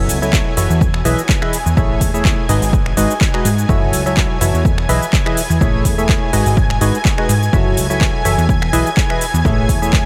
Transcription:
Already playing: F#1 F#3 E4 F#4 A4 C#5 E5 G#5
0.09 C#2, open hi-hat, cabasa
0.22 F#3 E4 F#4 A4 C#5 E5, cabasa
0.33 kick, clap, cabasa
0.57 F#1 E3 E4 F#4 A4 C#5 E5, open hi-hat, cabasa
0.70 E2, cabasa
0.81 kick, cabasa
0.94 finger snap
1.05 B1 E3 E4 G#4 B4 D#5 E5, open hi-hat, cabasa
1.19 cabasa
1.29 kick, clap, cabasa
1.42 E3 E4 G#4 B4 D#5 E5, finger snap
1.53 open hi-hat, cabasa
1.66 E2, cabasa
1.77 A1 A3 E4 G#4 A4 C#5 E5, kick, cabasa
2.01 E2, kick, open hi-hat, cabasa
2.14 A3 E4 G#4 A4 C#5 E5, cabasa
2.25 kick, clap, cabasa
2.49 G#1 G#3 D#4 F#4 G#4 B4 D#5, open hi-hat, cabasa
2.62 G#1, open hi-hat, cabasa
2.73 kick, cabasa
2.86 finger snap
2.97 G#1 G#3 D#4 F#4 G#4 B4 D#5, open hi-hat, cabasa
3.11 cabasa
3.21 kick, clap, cabasa
3.34 G#3 D#4 F#4 G#4 B4 D#5, finger snap
3.45 G#2, open hi-hat, cabasa
3.59 cabasa
3.69 F#1 F#3 E4 F#4 A4 C#5 E5, kick, cabasa
3.93 C#2, open hi-hat, cabasa
4.06 F#3 E4 F#4 A4 C#5 E5, cabasa
4.17 kick, clap, cabasa
4.41 F#1 E3 E4 F#4 A4 C#5 E5, open hi-hat, cabasa
4.54 E2, cabasa
4.65 kick, cabasa
4.78 finger snap
4.89 B1 E3 E4 G#4 B4 D#5 E5, open hi-hat, cabasa
5.03 cabasa
5.13 kick, clap, cabasa
5.26 E3 E4 G#4 B4 D#5 E5, finger snap
5.37 open hi-hat, cabasa
5.50 E2, cabasa
5.61 A1 A3 E4 G#4 A4 C#5 E5, kick, cabasa
5.85 E2, kick, open hi-hat, cabasa
5.98 A3 E4 G#4 A4 C#5 E5, cabasa
6.09 kick, clap, cabasa
6.33 G#1 G#3 D#4 F#4 G#4 B4 D#5, open hi-hat, cabasa
6.46 G#1, open hi-hat, cabasa
6.57 kick, cabasa
6.70 finger snap
6.81 G#1 G#3 D#4 F#4 G#4 B4 D#5, open hi-hat, cabasa
6.95 cabasa
7.05 kick, clap, cabasa
7.18 G#3 D#4 F#4 G#4 B4 D#5, finger snap
7.29 G#2, open hi-hat, cabasa
7.43 cabasa
7.53 F#1 F#3 E4 F#4 A4 C#5 E5, kick, cabasa
7.77 C#2, open hi-hat, cabasa
7.90 F#3 E4 F#4 A4 C#5 E5, cabasa
8.01 kick, clap, cabasa
8.25 F#1 E3 E4 F#4 A4 C#5 E5, open hi-hat, cabasa
8.38 E2, cabasa
8.49 kick, cabasa
8.62 finger snap
8.73 B1 E3 E4 G#4 B4 D#5 E5, open hi-hat, cabasa
8.87 cabasa
8.97 kick, clap, cabasa
9.10 E3 E4 G#4 B4 D#5 E5, finger snap
9.21 open hi-hat, cabasa
9.34 E2, cabasa
9.45 A1 A3 E4 G#4 A4 C#5 E5, kick, cabasa
9.69 E2, kick, open hi-hat, cabasa
9.82 A3 E4 G#4 A4 C#5 E5, cabasa
9.93 kick, clap, cabasa

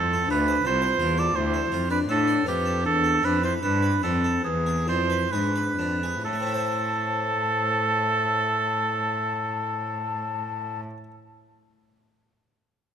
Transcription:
Already playing: F2 C4 A4
0.13 A4
0.28 D2 D4 F4 B4
0.48 C5
0.64 C2 F4 A4 C5
0.82 C5
1.00 E2 F4
1.17 F4 A4 D5
1.35 D2 E4 C5
1.54 A4
1.72 F2 F4
1.89 D4 B4 D5
2.08 A2 D4 A4
2.28 D5
2.46 F2 F4 G4 B4
2.66 A4
2.84 E2 D4 A4
3.04 A4
3.23 F2 D4 B4
3.42 E4 B4 C5
3.62 G2 D4 A4 B4
3.82 B4
4.03 F2 C4 D4 A4
4.24 A4
4.44 E2 G#4 B4
4.66 G#4
4.87 F2 D4 E4 C5
5.10 B4
5.32 G#2 D#4 G#4 B4
5.37 D4
5.56 B4
5.78 F2 D4
6.03 G#4
6.25 A2 A4 A5
6.33 A3
6.40 C4
6.47 E4
6.54 C5

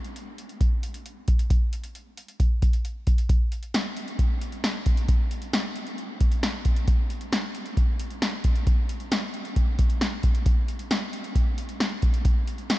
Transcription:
0.04 closed hi-hat
0.16 closed hi-hat
0.38 closed hi-hat
0.49 closed hi-hat
0.61 kick, closed hi-hat
0.83 closed hi-hat
0.94 closed hi-hat
1.06 closed hi-hat
1.28 kick, closed hi-hat
1.39 closed hi-hat
1.50 kick, closed hi-hat
1.73 closed hi-hat
1.84 closed hi-hat
1.95 closed hi-hat
2.17 closed hi-hat
2.28 closed hi-hat
2.40 kick, closed hi-hat
2.62 kick, closed hi-hat
2.73 closed hi-hat
2.85 closed hi-hat
3.07 kick, closed hi-hat
3.18 closed hi-hat
3.29 kick, closed hi-hat
3.52 closed hi-hat
3.63 closed hi-hat
3.74 snare, closed hi-hat
3.97 closed hi-hat
4.08 closed hi-hat
4.19 kick, closed hi-hat
4.41 closed hi-hat
4.52 closed hi-hat
4.64 snare, closed hi-hat
4.86 kick, closed hi-hat
4.97 closed hi-hat
5.08 kick, closed hi-hat
5.31 closed hi-hat
5.42 closed hi-hat
5.53 snare, closed hi-hat
5.76 closed hi-hat
5.87 closed hi-hat
5.98 closed hi-hat
6.21 kick, closed hi-hat
6.32 closed hi-hat
6.43 snare, closed hi-hat
6.65 kick, closed hi-hat
6.76 closed hi-hat
6.88 kick, closed hi-hat
7.10 closed hi-hat
7.21 closed hi-hat
7.32 snare, closed hi-hat
7.55 closed hi-hat
7.66 closed hi-hat
7.77 kick, closed hi-hat
8.00 closed hi-hat
8.10 closed hi-hat
8.22 snare, closed hi-hat
8.44 kick, closed hi-hat
8.55 closed hi-hat
8.67 kick, closed hi-hat
8.89 closed hi-hat
9.00 closed hi-hat
9.11 snare, closed hi-hat
9.34 closed hi-hat
9.45 closed hi-hat
9.56 kick, closed hi-hat
9.79 kick, closed hi-hat
9.90 closed hi-hat
10.01 snare, closed hi-hat
10.23 kick, closed hi-hat
10.35 closed hi-hat
10.46 kick, closed hi-hat
10.68 closed hi-hat
10.79 closed hi-hat
10.91 snare, closed hi-hat
11.13 closed hi-hat
11.24 closed hi-hat
11.35 kick, closed hi-hat
11.58 closed hi-hat
11.69 closed hi-hat
11.80 snare, closed hi-hat
12.02 kick, closed hi-hat
12.14 closed hi-hat
12.25 kick, closed hi-hat
12.47 closed hi-hat
12.58 closed hi-hat
12.70 snare, closed hi-hat

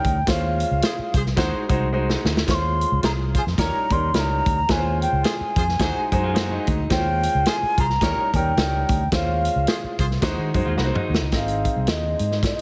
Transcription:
Already playing: G3 C#4 D#4 A#4 G5
0.04 D2, kick, closed hi-hat
0.27 D#2 G#3 C#4 F4 C5 F5, kick, snare, closed hi-hat
0.60 closed hi-hat
0.71 C#2
0.82 F4 G#4 C5, snare, closed hi-hat
0.99 muted fingered electric bass stroke
1.14 C2 F4 G#4 C5, kick, closed hi-hat
1.26 snare
1.37 D#2 G#3 D#4 F#4 G#4 C5, kick, snare, closed hi-hat
1.54 muted fingered electric bass stroke
1.69 C2 G#3 D#4 F#4 C5, kick, closed hi-hat
1.93 G#3 D#4 F#4 C5
2.10 snare
2.24 D2, snare
2.37 snare
2.47 D#2 G#3 C#4 F4 C5 C#6, kick, snare, closed hi-hat
2.54 C6
2.81 closed hi-hat
2.92 C#2
3.03 C2 F4 G#4 C5 A#5, snare, closed hi-hat
3.35 F4 G#4 C5 G#5, kick, closed hi-hat
3.47 F2, snare
3.58 D#2 G3 C#4 D#4 G4 A#4 C#5 A#5, kick, snare, closed hi-hat
3.74 muted fingered electric bass stroke
3.90 D#2 G3 C#4 D#4 A#4 C6, kick, closed hi-hat
4.13 C#2 G3 C#4 D#4 A#4 B5, snare, closed hi-hat
4.20 A#5
4.46 D2, kick, closed hi-hat
4.69 D#2 G#3 C#4 F4 B4 G#5, kick, snare, closed hi-hat
4.77 C5
5.02 G5, closed hi-hat
5.12 C#2
5.24 F4 G#4 C5 G#5, snare, closed hi-hat
5.41 muted fingered electric bass stroke
5.56 F2 F4 G#4 C5, kick, closed hi-hat
5.69 snare
5.79 D#2 G#3 D#4 F#4 G#4 C5, kick, snare, closed hi-hat
5.96 muted fingered electric bass stroke
6.12 F#2 G#3 D#4 F#4 C5, kick, closed hi-hat
6.24 G#3 F4
6.34 G#3 A#3 D#4 F#4 C5, snare, closed hi-hat
6.52 F#3 D#4
6.67 D2, kick, closed hi-hat
6.90 D#2 G#3 C#4 E4 C5 G5, kick, snare, closed hi-hat
6.97 F4
7.23 closed hi-hat
7.35 C#2
7.46 F4 G#4 C5 G#5, snare, closed hi-hat
7.63 muted fingered electric bass stroke
7.78 C2 F4 G#4 C5 A#5, kick, closed hi-hat
7.90 snare
8.01 D#2 G3 C#4 D#4 G4 A#4 C#5, kick, snare, closed hi-hat
8.18 muted fingered electric bass stroke
8.34 D#2 G3 C#4 D#4 A#4 G5, kick, closed hi-hat
8.56 C#2 G3 C#4 D#4 A#4, snare, closed hi-hat
8.89 D2, kick, closed hi-hat
9.12 D#2 G#3 C#4 F4 C5 F5, kick, snare, closed hi-hat
9.45 closed hi-hat
9.56 C#2
9.67 F4 G#4 C5, snare, closed hi-hat
9.84 muted fingered electric bass stroke
9.99 C2 F4 G#4 C5, kick, closed hi-hat
10.11 snare
10.22 D#2 G#3 D#4 F#4 G#4 C5, kick, snare, closed hi-hat
10.38 D#3
10.54 F#2 G#3 D#4 F#4 C5, kick, closed hi-hat
10.66 D#2 G#3 F4
10.77 C2 G#3 A#3 D#4 F#4 B4, snare
10.85 C5
10.94 F#3 D#4, mid tom
11.09 D#2
11.14 snare
11.21 C#2
11.32 G#1 C4 D#4 G#4 C5 D#5, kick, snare, closed hi-hat
11.36 F5
11.48 closed hi-hat
11.65 kick, closed hi-hat
11.76 C2
11.87 D#2 D#5, snare, closed hi-hat
12.19 G#2, closed hi-hat
12.32 snare
12.43 D#5, kick, snare, closed hi-hat

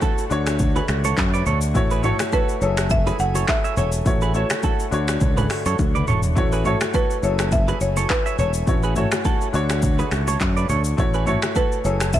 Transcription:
Already playing: A3 E4 F#4 C5 C#5
0.01 F#4 A4, kick, high bongo, shaker
0.18 shaker
0.30 D2 D3 D4 F#4 C#5, shaker
0.47 finger snap, cross-stick, shaker
0.59 kick, low conga, shaker
0.76 G#4 B4, high bongo, low bongo, shaker
0.88 C#2, finger snap, cross-stick, shaker
1.04 A4 C#5, low bongo, shaker
1.17 F#2, kick, clap, high bongo, shaker
1.34 B4 D5, shaker
1.46 D2 A4 C#5, low conga, shaker
1.61 shaker
1.74 A1 A3 E4 F#4 C#5, kick, low conga, shaker
1.91 G#4 B4, shaker
2.03 A3 E4 F#4 A4 C#5, mid tom, high bongo, shaker
2.19 finger snap, cross-stick, low bongo, shaker
2.32 F#4 A4 B4, kick, high bongo, shaker
2.49 shaker
2.60 F#1 F#3 A3 E4 G#4 A4 C#5 G#5, shaker
2.77 finger snap, cross-stick, shaker
2.90 E5, kick, low conga, shaker
3.07 G#4 B4, high bongo, low bongo, shaker
3.19 F#1 F#5, shaker
3.35 A4 C#5, low bongo, shaker
3.48 E5, finger snap, kick, cross-stick, clap, high bongo, shaker
3.64 C#5 E5, shaker
3.77 E1 A4 C#5, low conga, shaker
3.92 shaker
4.05 A1 A3 E4 F#4 C#5, kick, low conga, shaker
4.21 G#4 B4, shaker
4.33 A3 E4 F#4 A4 C#5, shaker
4.50 finger snap, cross-stick, low bongo, shaker
4.63 F#4 A4, kick, high bongo, shaker
4.80 shaker
4.91 D2 D3 D4 F#4 C#5, shaker
5.08 finger snap, cross-stick, shaker
5.21 C#2, kick, low conga, shaker
5.37 G#4 B4, mid tom, high bongo, low bongo, shaker
5.50 finger snap, cross-stick, open hi-hat, shaker
5.66 F#2 A4 C#5, low bongo, shaker
5.79 D2, kick, high tom, high bongo, shaker
5.95 B4 D5, mid tom, shaker
6.08 E1 A4 C#5, mid tom, low conga, shaker
6.23 floor tom, shaker
6.35 A1 A3 E4 F#4 C#5, kick, low conga, shaker
6.52 G#4 B4, shaker
6.64 A3 E4 F#4 A4 C#5, mid tom, high bongo, shaker
6.81 finger snap, cross-stick, low bongo, shaker
6.94 F#4 A4 B4, kick, high bongo, shaker
7.11 shaker
7.22 F#1 F#3 A3 E4 G#4 A4 C#5 G#5, shaker
7.39 finger snap, cross-stick, shaker
7.52 E5, kick, low conga, shaker
7.68 G#4 B4, high bongo, low bongo, shaker
7.81 F#1 C#5, shaker
7.96 A4 C#5, low bongo, shaker
8.09 B4, finger snap, kick, cross-stick, clap, high bongo, shaker
8.26 C#5 E5, shaker
8.38 E1 A4 C#5, low conga, shaker
8.54 shaker
8.66 A1 A3 C#4 E4 F#4 C#5, kick, low conga, shaker
8.83 G#4 B4, shaker
8.95 A3 E4 F#4 A4 C#5, mid tom, high bongo, shaker
9.12 finger snap, cross-stick, low bongo, shaker
9.25 F#4 A4, kick, high bongo, shaker
9.41 shaker
9.53 D2 D3 D4 F#4 C#5, shaker
9.70 finger snap, cross-stick, shaker
9.82 kick, low conga, shaker
9.99 G#4 B4, high bongo, low bongo, shaker
10.11 C#2, finger snap, cross-stick, shaker
10.27 A4 C#5, low bongo, shaker
10.40 F#2, kick, clap, high bongo, shaker
10.57 B4 D5, shaker
10.69 D2 A4 C#5, low conga, shaker
10.84 shaker
10.97 A1 A3 E4 F#4 C#5, kick, low conga, shaker
11.14 G#4 B4, shaker
11.26 A3 E4 F#4 A4 C#5, mid tom, high bongo, shaker
11.42 finger snap, cross-stick, low bongo, shaker
11.55 F#4 A4 B4, kick, high bongo, shaker
11.72 shaker
11.84 F#1 F#3 A3 E4 G#4 A4 C#5 G#5, shaker
12.00 finger snap, cross-stick, shaker
12.13 E5, kick, low conga, shaker

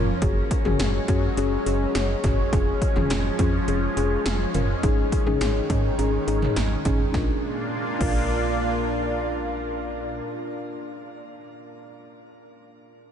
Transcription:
Already playing: F1 F3 A#3 C#4
0.22 F#1 F#3 G#3 C#4 F#4 G#4, kick, closed hi-hat
0.51 kick, closed hi-hat
0.65 F#1 C#4 F#4 G#4, mid tom
0.79 F#1, snare, closed hi-hat
1.08 F#2 C#4 F#4 G#4, kick, closed hi-hat
1.37 F#1 C#4 F#4 G#4, closed hi-hat
1.66 F#1 C#4 F#4 G#4, closed hi-hat
1.95 F#1, snare, closed hi-hat
2.24 F#1 C#4 F#4 G#4, kick, closed hi-hat, mid tom
2.52 F1 F3 C#4 F4 G#4, kick, closed hi-hat
2.82 kick, closed hi-hat
2.96 F1 C#4 F4 G#4, mid tom
3.10 F1, snare, closed hi-hat
3.39 F2 C#4 F4 G#4, kick, closed hi-hat
3.68 F1 C#4 F4 G#4, closed hi-hat
3.97 F1 C#4 F4 G#4, closed hi-hat
4.26 F1, snare, closed hi-hat
4.54 F#1 C#4 F4 A#4, closed hi-hat, mid tom
4.83 G#1 D#3 C#4 D#4 G#4, kick, closed hi-hat
5.12 kick, closed hi-hat
5.26 G#1 C#4 D#4 G#4, mid tom
5.41 G#1, snare, closed hi-hat
5.70 G#2 C#4 D#4 G#4, kick, closed hi-hat
5.98 G#1 C#4 D#4 G#4, closed hi-hat
6.27 G#1 C#4 D#4 G#4, closed hi-hat
6.42 mid tom
6.56 G#1, snare, closed hi-hat
6.85 G#1 C#4 D#4 G#4, kick, closed hi-hat, mid tom
7.12 A#1 A#2 A#3 D4 F4 A#4, kick, snare
7.99 A#1 D4 F4 A#4, kick, crash

